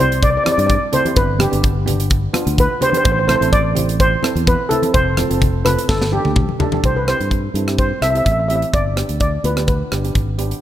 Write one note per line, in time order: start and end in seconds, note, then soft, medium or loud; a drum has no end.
0.00 0.37 C2 medium
0.00 0.27 C4 medium
0.00 0.27 E4 medium
0.00 0.27 G4 medium
0.00 0.23 C5 medium
0.12 closed hi-hat medium
0.22 0.29 D5 medium
0.22 kick loud
0.22 closed hi-hat medium
0.30 0.36 D5 medium
0.37 0.43 D5 medium
0.44 0.74 C4 medium
0.44 0.74 E4 medium
0.44 0.75 G4 medium
0.44 0.51 D5 medium
0.44 cross-stick medium
0.44 closed hi-hat medium
0.44 high conga medium
0.52 0.59 D5 medium
0.58 0.77 G2 medium
0.58 0.65 D5 medium
0.58 closed hi-hat medium
0.67 0.74 D5 medium
0.67 kick medium
0.67 closed hi-hat medium
0.92 1.00 C4 medium
0.92 1.00 E4 medium
0.92 1.00 A4 medium
0.92 1.16 C5 medium
0.92 closed hi-hat medium
0.92 low conga medium
1.05 1.16 C4 medium
1.05 1.17 E4 medium
1.05 1.17 G4 medium
1.05 closed hi-hat medium
1.05 high conga medium
1.16 1.45 G1 loud
1.16 1.41 B4 medium
1.16 kick loud
1.16 closed hi-hat medium
1.39 1.47 B3 medium
1.39 1.47 D4 medium
1.39 1.47 G4 medium
1.39 1.62 G4 medium
1.39 cross-stick medium
1.39 closed hi-hat medium
1.39 high conga medium
1.39 low conga medium
1.51 2.26 G1 medium
1.51 1.73 B3 medium
1.51 1.73 D4 medium
1.51 1.74 G4 medium
1.51 closed hi-hat medium
1.64 kick medium
1.64 closed hi-hat medium
1.86 2.15 B3 medium
1.86 2.16 D4 medium
1.86 2.16 G4 medium
1.86 closed hi-hat medium
1.86 low conga medium
2.00 closed hi-hat medium
2.10 kick loud
2.10 closed hi-hat medium
2.33 2.63 B3 medium
2.33 2.63 D4 medium
2.33 2.63 F4 loud
2.33 cross-stick medium
2.33 closed hi-hat medium
2.33 high conga medium
2.47 2.65 D2 loud
2.47 closed hi-hat medium
2.58 2.84 B4 medium
2.58 kick medium
2.58 closed hi-hat medium
2.80 2.89 B3 medium
2.80 2.89 D4 medium
2.80 2.89 G4 medium
2.80 2.89 C5 loud
2.80 closed hi-hat medium
2.80 low conga medium
2.90 3.05 B3 medium
2.90 3.05 D4 medium
2.90 3.05 G4 medium
2.90 2.96 C5 medium
2.90 high conga medium
2.94 3.03 C5 medium
2.94 closed hi-hat medium
3.04 3.34 A1 loud
3.04 3.11 C5 medium
3.04 kick loud
3.04 closed hi-hat medium
3.12 3.18 C5 medium
3.19 3.26 C5 medium
3.28 3.36 C4 medium
3.28 3.36 E4 medium
3.28 3.36 A4 medium
3.28 3.34 C5 medium
3.28 cross-stick medium
3.28 closed hi-hat medium
3.28 high conga medium
3.28 low conga medium
3.36 3.43 C5 medium
3.41 4.15 A1 medium
3.41 3.62 C4 medium
3.41 3.63 E4 medium
3.41 3.63 A4 medium
3.41 closed hi-hat medium
3.53 4.01 D5 loud
3.53 kick medium
3.53 closed hi-hat medium
3.75 4.04 C4 medium
3.75 4.04 E4 medium
3.75 4.04 G4 medium
3.75 closed hi-hat medium
3.75 low conga medium
3.89 closed hi-hat medium
4.00 4.44 C5 loud
4.00 kick loud
4.00 closed hi-hat medium
4.22 4.52 C4 medium
4.22 4.52 E4 medium
4.22 4.52 A4 medium
4.22 cross-stick medium
4.22 closed hi-hat medium
4.22 high conga medium
4.36 4.54 E2 loud
4.36 closed hi-hat medium
4.47 4.72 B4 medium
4.47 kick medium
4.47 closed hi-hat medium
4.69 4.78 C4 medium
4.69 4.78 E4 medium
4.69 4.94 A4 medium
4.69 4.78 A4 medium
4.69 closed hi-hat medium
4.69 low conga medium
4.82 4.94 C4 medium
4.82 4.94 E4 medium
4.82 4.94 A4 medium
4.82 closed hi-hat medium
4.82 high conga medium
4.94 5.22 F1 loud
4.94 5.67 C5 loud
4.94 kick loud
4.94 closed hi-hat medium
5.17 5.25 C4 medium
5.17 5.25 F4 medium
5.17 5.25 A4 medium
5.17 cross-stick medium
5.17 closed hi-hat medium
5.17 high conga medium
5.17 low conga medium
5.30 5.76 F1 medium
5.30 5.51 C4 medium
5.30 5.51 F4 medium
5.30 5.52 A4 medium
5.30 closed hi-hat medium
5.41 kick medium
5.41 closed hi-hat medium
5.41 low conga medium
5.65 5.89 C4 medium
5.65 5.89 F4 medium
5.65 5.89 A4 medium
5.65 5.87 B4 medium
5.65 cross-stick medium
5.65 closed hi-hat medium
5.65 low conga medium
5.79 closed hi-hat medium
5.89 6.17 G1 loud
5.89 5.99 A4 medium
5.89 kick loud
5.89 snare medium
6.02 snare medium
6.12 6.41 D4 medium
6.12 6.41 G4 medium
6.12 6.35 G4 medium
6.12 6.41 A4 medium
6.12 high conga medium
6.25 6.44 D2 loud
6.25 high tom medium
6.36 kick medium
6.36 mid tom medium
6.49 high conga medium
6.59 6.67 D4 medium
6.59 6.67 G4 medium
6.59 6.67 A4 loud
6.59 floor tom loud
6.59 low conga medium
6.72 6.84 D4 medium
6.72 6.84 G4 medium
6.72 6.84 A4 loud
6.72 floor tom medium
6.72 high conga medium
6.84 7.12 C2 medium
6.84 6.97 C5 medium
6.84 kick medium
6.84 closed hi-hat soft
6.97 7.01 B4 medium
7.08 7.36 C4 medium
7.08 7.36 E4 medium
7.08 7.36 G4 medium
7.08 7.78 C5 medium
7.08 cross-stick medium
7.08 closed hi-hat medium
7.20 7.47 G2 medium
7.20 closed hi-hat soft
7.31 kick medium
7.31 closed hi-hat medium
7.54 7.91 G2 medium
7.54 7.62 C4 medium
7.54 7.62 E4 medium
7.54 7.62 A4 medium
7.54 closed hi-hat medium
7.67 7.88 C4 medium
7.67 7.88 E4 medium
7.67 7.89 G4 medium
7.67 cross-stick medium
7.67 closed hi-hat medium
7.78 8.03 C5 medium
7.78 kick medium
7.78 closed hi-hat soft
8.01 8.20 C2 medium
8.01 8.10 C4 medium
8.01 8.10 E4 medium
8.01 8.10 A4 medium
8.01 8.09 E5 medium
8.01 cross-stick medium
8.01 closed hi-hat medium
8.11 8.16 E5 medium
8.15 8.36 C4 medium
8.15 8.36 E4 soft
8.15 8.36 G4 medium
8.15 8.24 E5 medium
8.15 closed hi-hat soft
8.25 8.63 A1 medium
8.25 8.30 E5 medium
8.25 kick medium
8.25 closed hi-hat medium
8.32 8.38 E5 medium
8.39 8.47 E5 medium
8.48 8.73 C4 medium
8.48 8.73 E4 medium
8.48 8.74 G4 medium
8.48 8.55 E5 medium
8.48 closed hi-hat medium
8.56 8.63 E5 medium
8.62 closed hi-hat soft
8.74 9.02 G1 medium
8.74 9.19 D5 medium
8.74 kick medium
8.74 closed hi-hat medium
8.96 9.25 B3 medium
8.96 9.25 D4 medium
8.96 9.25 G4 medium
8.96 cross-stick medium
8.96 closed hi-hat medium
9.09 9.36 D2 medium
9.09 closed hi-hat medium
9.20 9.45 D5 medium
9.20 kick medium
9.20 closed hi-hat medium
9.44 9.81 D2 medium
9.44 9.52 B3 medium
9.44 9.52 D4 medium
9.44 9.52 F4 medium
9.44 9.66 B4 medium
9.44 closed hi-hat medium
9.57 9.78 B3 medium
9.57 9.78 D4 medium
9.57 9.78 G4 medium
9.57 cross-stick medium
9.57 closed hi-hat medium
9.68 10.35 B4 medium
9.68 kick medium
9.68 closed hi-hat soft
9.92 10.10 G1 medium
9.92 9.99 B3 medium
9.92 9.99 D4 medium
9.92 9.99 G4 medium
9.92 cross-stick medium
9.92 closed hi-hat medium
10.04 10.25 B3 medium
10.04 10.26 D4 soft
10.04 10.26 G4 medium
10.04 closed hi-hat medium
10.15 10.52 G#1 medium
10.15 kick medium
10.15 closed hi-hat medium
10.38 10.61 B3 medium
10.38 10.61 D4 medium
10.38 10.61 G4 medium
10.38 closed hi-hat medium
10.51 closed hi-hat medium